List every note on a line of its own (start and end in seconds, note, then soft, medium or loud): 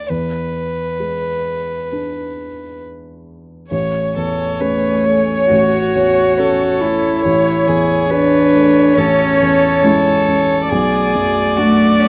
0.00 0.12 D4 soft
0.00 0.12 B4 soft
0.00 0.11 D5 medium
0.09 3.68 E2 soft
0.09 2.82 B4 soft
1.00 2.46 G#3 soft
1.92 3.68 D4 soft
1.92 3.68 B4 soft
3.71 5.46 A1 soft
3.71 7.20 A3 soft
3.71 4.13 C#5 soft
3.71 7.20 C#5 soft
3.71 7.20 G#5 soft
4.16 4.87 E2 soft
4.16 4.62 A4 soft
4.58 5.49 A3 medium
4.58 5.01 C#4 soft
4.58 5.01 G#4 soft
4.58 5.06 B4 soft
5.04 5.77 A3 soft
5.04 6.40 C#5 medium
5.48 7.20 A1 soft
5.48 6.82 F#4 medium
5.95 6.64 E2 soft
6.38 6.78 C#4 soft
6.38 7.24 A4 medium
6.38 6.78 A4 soft
6.81 7.50 A3 soft
6.81 8.10 E4 medium
7.23 8.93 A1 soft
7.23 10.66 E3 soft
7.23 10.66 C#5 soft
7.23 7.69 C#5 medium
7.23 10.66 C#5 soft
7.23 10.66 G#5 soft
7.67 8.36 E2 soft
7.67 8.11 G#4 medium
8.10 8.98 D4 medium
8.10 8.49 G#4 soft
8.10 8.99 B4 medium
8.10 8.49 C#5 soft
8.54 9.23 A3 soft
8.97 10.66 A1 soft
8.97 9.84 C#4 medium
8.97 9.40 A4 medium
9.40 10.10 E2 soft
9.40 10.71 A4 medium
9.83 10.70 G#3 medium
9.83 10.23 C#4 soft
9.83 10.24 E4 soft
10.29 10.71 C#4 soft
10.69 12.08 B1 medium
10.69 12.08 A3 medium
10.69 12.08 F#4 medium
10.69 11.58 G#4 medium
10.69 12.08 D5 medium
11.15 11.84 F#2 soft
11.56 12.01 A3 medium
11.56 11.97 D4 soft
11.56 12.08 F#4 medium
11.56 11.97 F#4 soft
12.00 12.08 A3 soft
12.00 12.08 C#4 medium